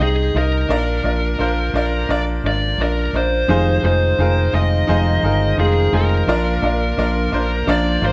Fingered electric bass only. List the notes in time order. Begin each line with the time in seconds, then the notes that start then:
0.00 C2
0.35 C2
0.69 A#1
1.04 A#1
1.39 A#1
1.74 A#1
2.09 A#1
2.44 G#1
2.78 A#1
3.13 A#1
3.48 F1
3.83 F1
4.19 F1
4.53 F1
4.88 F1
5.23 G1
5.58 F1
5.92 F1
6.28 A#1
6.62 A#1
6.97 A#1
7.33 A#1
7.67 A#1
8.02 G#1